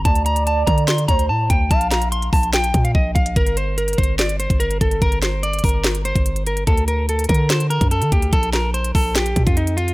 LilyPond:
<<
  \new Staff \with { instrumentName = "Soft synth lead" } { \time 4/4 \key g \minor \tempo 4 = 145 d''2~ d''8 c''8 r4 | f''4 r2. | r1 | r1 |
r1 | r1 | }
  \new Staff \with { instrumentName = "Clean electric guitar" } { \time 4/4 \key g \minor a''8 bes''8 a''8 bes''8 c'''8 bes''8 a''8 g''8 | a''8 bes''8 c'''8 a''8 g''8. f''16 ees''8 f''8 | bes'8 c''8 bes'8 c''8 d''8 c''8 bes'8 a'8 | bes'8 c''8 d''8 bes'4 c''4 bes'8 |
a'8 bes'8 a'8 bes'8 c''8 bes'8 a'8 g'8 | a'8 bes'8 c''8 a'8 g'8. f'16 ees'8 f'8 | }
  \new Staff \with { instrumentName = "808-style bass" } { \clef bass \time 4/4 \key g \minor d,4. d4 d,8 a,8 d,8 | bes,,4. bes,,4 bes,8 bes,,8 bes,,8 | g,,4. g,,4~ g,,16 g,,8. g,,8 | g,,4. g,,4~ g,,16 g,,4~ g,,16 |
d,4. d4~ d16 fis,8 d16 d,8 | bes,,4. bes,,4 bes,16 f,4~ f,16 | }
  \new DrumStaff \with { instrumentName = "Drums" } \drummode { \time 4/4 <hh bd>16 hh16 hh16 hh16 hh8 <hh bd>16 hh16 <hh sn>16 hh16 <hh bd>16 hh16 r8 <hh bd>8 | <hh bd>16 hh16 <hh sn>16 hh16 hh16 hh16 <hho bd>16 hh16 <hh sn>16 hh16 <hh bd>16 hh16 bd8 <hh bd>16 hh16 | <hh bd>16 hh16 hh8 hh16 hh32 hh32 <hh bd>32 hh16. <hh sn>16 hh16 hh16 <hh bd>16 hh16 hh16 <hh bd>16 hh16 | <hh bd>16 hh16 <hh sn>8 hh16 hh32 hh32 <hh hho bd>32 hh16. <hh sn>16 hh16 hh16 <hh bd>16 hh16 hh16 hh16 hh16 |
<hh bd>16 hh16 hh8 hh16 hh32 hh32 <hh bd>32 hh16. <hh sn>16 hh16 hh16 <hh bd>16 hh16 hh16 <hh bd>16 hh16 | <hh bd>16 hh16 <hh sn>8 hh16 hh16 <hho bd>8 <hh sn>16 hh16 <hh bd>16 <hh bd>16 hh16 hh16 hh16 hh16 | }
>>